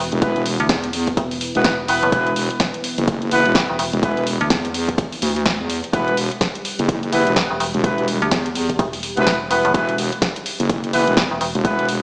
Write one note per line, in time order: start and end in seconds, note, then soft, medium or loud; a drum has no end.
0.00 0.10 E1 loud
0.00 12.02 B3 medium
0.00 12.02 E4 medium
0.00 5.92 B4 medium
0.12 0.58 E1 loud
0.12 closed hi-hat soft
0.22 0.44 E3 medium
0.22 0.44 B3 medium
0.22 0.44 B4 loud
0.22 kick loud
0.22 closed hi-hat medium
0.36 closed hi-hat soft
0.46 open hi-hat loud
0.60 0.68 D2 loud
0.60 closed hi-hat soft
0.69 1.16 E2 loud
0.69 kick loud
0.69 snare loud
0.69 closed hi-hat medium
0.84 closed hi-hat medium
0.93 open hi-hat loud
1.07 kick medium
1.07 closed hi-hat medium
1.17 1.53 E1 medium
1.17 kick loud
1.17 closed hi-hat medium
1.31 open hi-hat medium
1.41 open hi-hat loud
1.55 1.63 E1 medium
1.55 1.76 E3 medium
1.55 1.76 B3 medium
1.55 1.76 B4 loud
1.55 closed hi-hat soft
1.64 1.87 E1 loud
1.64 kick loud
1.64 snare loud
1.64 closed hi-hat medium
1.88 2.01 E1 loud
1.88 2.10 E3 medium
1.88 2.10 B3 medium
1.88 2.10 B4 loud
1.88 open hi-hat loud
2.03 2.11 F#1 loud
2.03 closed hi-hat soft
2.12 2.48 E1 medium
2.12 2.34 E3 medium
2.12 2.34 B3 medium
2.12 2.34 B4 loud
2.12 kick loud
2.12 closed hi-hat medium
2.27 closed hi-hat soft
2.36 open hi-hat loud
2.50 closed hi-hat soft
2.60 kick loud
2.60 snare loud
2.60 closed hi-hat medium
2.74 closed hi-hat medium
2.84 open hi-hat loud
2.98 3.43 F#1 loud
2.98 closed hi-hat medium
3.08 kick loud
3.08 closed hi-hat medium
3.22 closed hi-hat soft
3.31 3.53 E3 medium
3.31 3.53 B3 medium
3.31 3.53 B4 loud
3.31 open hi-hat loud
3.46 3.54 E1 loud
3.46 closed hi-hat soft
3.55 3.67 G1 loud
3.55 kick loud
3.55 snare loud
3.55 closed hi-hat medium
3.69 3.78 E1 loud
3.79 3.91 E1 loud
3.79 open hi-hat loud
3.93 4.39 E1 loud
3.93 closed hi-hat soft
4.03 4.25 E3 medium
4.03 4.25 B3 medium
4.03 4.25 B4 medium
4.03 kick loud
4.03 closed hi-hat medium
4.17 closed hi-hat soft
4.27 open hi-hat loud
4.41 4.49 D2 loud
4.41 closed hi-hat soft
4.50 4.97 E2 loud
4.50 kick loud
4.50 snare loud
4.50 closed hi-hat medium
4.65 closed hi-hat soft
4.74 open hi-hat loud
4.88 kick medium
4.88 closed hi-hat medium
4.98 kick loud
4.98 closed hi-hat medium
5.12 open hi-hat medium
5.22 5.58 D2 medium
5.22 open hi-hat loud
5.36 closed hi-hat soft
5.46 kick loud
5.46 snare loud
5.46 closed hi-hat medium
5.60 5.82 E2 loud
5.70 open hi-hat loud
5.84 closed hi-hat soft
5.93 6.29 E1 loud
5.93 6.15 E3 medium
5.93 6.15 B3 medium
5.93 12.02 G4 loud
5.93 6.15 B4 loud
5.93 kick loud
5.93 closed hi-hat medium
6.08 closed hi-hat soft
6.17 open hi-hat loud
6.32 closed hi-hat soft
6.41 kick loud
6.41 snare loud
6.41 closed hi-hat medium
6.55 closed hi-hat medium
6.65 open hi-hat loud
6.79 7.24 F#1 loud
6.79 closed hi-hat medium
6.89 kick loud
6.89 closed hi-hat medium
7.03 closed hi-hat soft
7.12 7.34 E3 medium
7.12 7.34 B3 medium
7.12 7.34 B4 loud
7.12 open hi-hat loud
7.27 7.35 E1 loud
7.27 closed hi-hat soft
7.36 7.48 G1 medium
7.36 kick loud
7.36 snare loud
7.36 closed hi-hat medium
7.50 7.59 E1 loud
7.60 7.72 E1 loud
7.60 open hi-hat loud
7.74 8.20 E1 loud
7.74 closed hi-hat soft
7.84 8.06 E3 medium
7.84 8.06 B3 medium
7.84 8.06 B4 loud
7.84 kick loud
7.84 closed hi-hat medium
7.98 closed hi-hat soft
8.08 open hi-hat loud
8.22 8.30 D2 loud
8.22 closed hi-hat soft
8.31 8.78 E2 loud
8.31 kick loud
8.31 snare loud
8.31 closed hi-hat medium
8.46 closed hi-hat medium
8.55 open hi-hat loud
8.69 kick medium
8.69 closed hi-hat medium
8.79 9.15 E1 loud
8.79 kick loud
8.79 closed hi-hat medium
8.93 open hi-hat medium
9.03 open hi-hat loud
9.17 9.25 E1 loud
9.17 9.38 E3 medium
9.17 9.38 B3 medium
9.17 9.38 B4 loud
9.17 closed hi-hat soft
9.27 9.49 E1 loud
9.27 kick loud
9.27 snare loud
9.27 closed hi-hat medium
9.51 9.62 E1 loud
9.51 9.72 E3 medium
9.51 9.72 B3 medium
9.51 9.72 B4 loud
9.51 open hi-hat loud
9.65 9.73 F#1 loud
9.65 closed hi-hat soft
9.74 10.10 E1 loud
9.74 9.96 E3 loud
9.74 9.96 B3 medium
9.74 9.96 B4 loud
9.74 kick loud
9.74 closed hi-hat medium
9.89 closed hi-hat soft
9.98 open hi-hat loud
10.12 closed hi-hat soft
10.22 kick loud
10.22 snare loud
10.22 closed hi-hat medium
10.36 closed hi-hat medium
10.46 open hi-hat loud
10.60 11.05 F#1 loud
10.60 closed hi-hat medium
10.69 kick loud
10.69 closed hi-hat medium
10.84 closed hi-hat soft
10.93 11.15 E3 loud
10.93 11.15 B3 medium
10.93 11.15 B4 loud
10.93 open hi-hat loud
11.07 11.16 E1 loud
11.07 closed hi-hat soft
11.17 11.29 G1 loud
11.17 kick loud
11.17 snare loud
11.17 closed hi-hat medium
11.31 11.39 E1 loud
11.41 11.53 E1 loud
11.41 open hi-hat loud
11.55 12.01 E1 loud
11.55 closed hi-hat soft
11.65 11.87 E3 medium
11.65 11.87 B3 medium
11.65 11.87 B4 loud
11.65 kick loud
11.65 closed hi-hat medium
11.79 closed hi-hat soft
11.89 open hi-hat loud